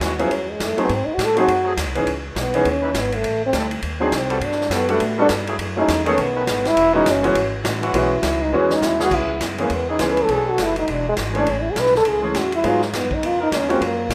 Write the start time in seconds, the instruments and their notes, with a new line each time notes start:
0.00 upright bass D#2, trombone section E3 G#3 C#4 F#4, snare, hi-hat pedal, ride
0.19 trombone F3, grand piano F#3 B3 C#4 E4 G#4, ride
0.30 upright bass E2, trombone F#3, ride
0.50 trombone G#3
0.60 upright bass F#2, snare, hi-hat pedal, ride
0.65 trombone A3
0.77 grand piano F#3 A3 C4 D#4 G#4, muted upright bass stroke, ride
0.82 trombone B3
0.89 upright bass G#2, ride
0.94 trombone C4
1.06 trombone D#4, muted upright bass stroke
1.14 upright bass A2, trombone F#4
1.19 snare, hi-hat pedal, ride
1.24 trombone A4
1.35 trombone section F#3 A3 C4 G#4, grand piano F#3 A3 C4 D#4 G#4, ride
1.40 trombone F#4
1.47 upright bass F#2, ride
1.65 trombone section F#3 A3 C4 G#4
1.77 upright bass D#2, snare, hi-hat pedal, ride
1.86 upright bass C2
1.95 upright bass G#1, grand piano E3 B3 C#4 D#4 G#4, ride
2.06 upright bass C#2, ride
2.35 upright bass B1, snare, hi-hat pedal, ride
2.41 trombone B3
2.54 grand piano E3 B3 C#4 D#4 G#4, ride
2.65 upright bass D#2, ride
2.70 trombone C#4
2.82 trombone section E3 C#4 D#4 B4
2.94 upright bass G#1, snare, hi-hat pedal, ride
3.00 trombone B3
3.12 trombone A3, ride
3.23 upright bass A1, ride
3.46 trombone C4
3.53 upright bass D2, trombone section G3 C4 E4 A4, snare, hi-hat pedal, ride
3.71 ride
3.82 upright bass D#2, ride
4.00 grand piano F#3 C4 D4 D#4 G#4, trombone section F#3 C4 D4 G#4
4.12 upright bass C2, snare, hi-hat pedal, ride
4.16 trombone C4
4.29 trombone section G3 B3 F#4 A4, ride
4.40 upright bass G2, hollow-body jazz guitar G3 B3 F#4, ride
4.45 trombone D4, hollow-body jazz guitar A4
4.52 snare
4.61 snare
4.70 upright bass F#2, trombone section G3 B3 F#4 A4, hollow-body jazz guitar G3 B3 F#4 A4, snare, hi-hat pedal, ride
4.75 trombone B3
4.88 grand piano G3 B3 D4 F#4 A4, trombone A3, ride
5.00 upright bass A2, hollow-body jazz guitar G3 B3 F#4 A4, ride
5.17 trombone section G3 B3 F#4 A4, grand piano G3 B3 D4 F#4 A4
5.22 trombone D4
5.29 upright bass G2, hollow-body jazz guitar G3 B3 F#4 A4, snare, hi-hat pedal, ride
5.47 trombone section F#3 A3 E4 G#4, ride
5.58 upright bass F#2, hollow-body jazz guitar F#3 A3 E4 G#4, ride
5.76 grand piano F#3 A3 C#4 E4 G#4, trombone D#4
5.88 upright bass E2, hollow-body jazz guitar F#3 A3 E4 G#4, snare, hi-hat pedal, ride
6.06 trombone section D#3 A3 C#4 G#4, grand piano D#3 A3 B3 C#4 A4, trombone C#4, ride
6.17 upright bass B1, hollow-body jazz guitar B2 A3 D#4 G#4, trombone B3, ride
6.35 trombone section D#3 A3 C#4 B4
6.47 upright bass G#1, hollow-body jazz guitar B2 A3 D#4 G#4, snare, hi-hat pedal, ride
6.65 trombone E4, snare, ride
6.76 upright bass E1, hollow-body jazz guitar E3 G#3 C#4 F#4, ride
6.93 grand piano E3 G#3 B3 C#4 F#4, trombone D#4
7.06 upright bass F#1, hollow-body jazz guitar E3 G#3 C#4 F#4, snare, hi-hat pedal, ride
7.11 trombone C#4
7.23 grand piano E3 G#3 B3 C#4 F#4, ride
7.34 upright bass G#1, hollow-body jazz guitar E3 G#3 C#4 F#4, ride
7.63 upright bass A1, hollow-body jazz guitar E3 G#3 C#4 F#4, snare, hi-hat pedal, ride
7.81 trombone section E3 G#3 C#4 F#4, ride
7.92 upright bass B1, hollow-body jazz guitar E3 G#3 C#4 F#4, grand piano E3 G#3 B3 C#4 F#4, ride
7.97 trombone E4
8.22 upright bass C#2, hollow-body jazz guitar E3 G#3 C#4 F#4, snare, hi-hat pedal, ride
8.42 trombone D#4
8.51 upright bass E2, hollow-body jazz guitar E3 G#3 C#4 F#4, grand piano E3 G#3 B3 C#4 F#4
8.56 trombone C#4
8.70 trombone D#4, snare
8.81 upright bass D#2, hollow-body jazz guitar E3 G#3 C#4 F#4, snare, hi-hat pedal
8.86 trombone E4
8.99 trombone section E3 B3 C#4 G#4, trombone F#4, snare
9.10 upright bass C#2, hollow-body jazz guitar C#3 G#3 B3 E4, kick, crash
9.15 trombone E4
9.40 upright bass F#2, hollow-body jazz guitar C#3 G#3 B3 E4, snare, hi-hat pedal, ride
9.58 grand piano E3 G#3 B3 C#4 G#4, trombone section E3 B3 C#4 G#4, trombone A#3, ride
9.70 upright bass E2, hollow-body jazz guitar C#3 G#3 B3 E4, ride
9.75 trombone B3
9.89 trombone section E3 B3 C#4 G#4, trombone D#4
9.99 upright bass C#2, hollow-body jazz guitar C#3 G#3 B3 E4, grand piano E3 G#3 B3 C#4 G#4, snare, hi-hat pedal, ride
10.03 trombone G#4
10.14 trombone B4, ride
10.24 trombone A4
10.28 upright bass B1, hollow-body jazz guitar B2 A3 D4 F#4, trombone section F#3 B3 D4 A4, ride
10.33 trombone G#4
10.50 trombone F#4
10.58 upright bass F#1, hollow-body jazz guitar B2 A3 D4 F#4, snare, hi-hat pedal, ride
10.63 trombone E4
10.76 trombone D#4, ride
10.88 upright bass E1, hollow-body jazz guitar E3 G#3 D4 F#4, ride
10.93 trombone D4
11.09 trombone G#3
11.17 upright bass G#1, hollow-body jazz guitar E3 G#3 D4 F#4, snare, hi-hat pedal, ride
11.34 grand piano E3 G#3 A3 C#4 G#4, ride
11.39 trombone D4
11.46 upright bass A1, hollow-body jazz guitar A2 G#3 C#4, ride
11.51 trombone C#4, hollow-body jazz guitar E4
11.62 trombone E4
11.71 trombone G#4
11.75 upright bass B1, hollow-body jazz guitar A2 G#3 C#4 E4, snare, hi-hat pedal, ride
11.80 trombone B4
11.86 snare
11.95 trombone A4, snare
12.04 upright bass C#2, hollow-body jazz guitar A2 G#3 C#4 E4, ride
12.09 trombone G#4
12.22 grand piano E3 G#3 A3 C#4 G#4
12.34 upright bass E2, hollow-body jazz guitar A2 G#3 C#4 E4, snare, hi-hat pedal, ride
12.39 trombone F#4
12.52 trombone E4, ride
12.63 hollow-body jazz guitar G#2 F#3 B3 D#4, upright bass G#2, grand piano F#3 G#3 B3 D#4 G#4, ride
12.67 trombone F4
12.82 trombone G#3, snare
12.93 upright bass F#2, hollow-body jazz guitar G#2 F#3 B3 D#4, trombone B3, snare, hi-hat pedal, ride
13.11 trombone D#4, kick
13.22 upright bass F2, hollow-body jazz guitar C#3 B3 F4 A#4, ride
13.27 trombone F4
13.40 trombone section F3 B3 D#4 A#4, trombone D#4
13.50 upright bass D#2, hollow-body jazz guitar C#3 B3 F4 A#4, snare, hi-hat pedal, ride
13.56 trombone C#4
13.68 grand piano F3 G#3 A#3 C#4 F#4, trombone C4, ride
13.80 upright bass F#2, hollow-body jazz guitar F#3 A#3 F4 G#4, ride
13.85 trombone A#3
14.09 upright bass A#2, hollow-body jazz guitar F#3 A#3 F4, snare, hi-hat pedal, ride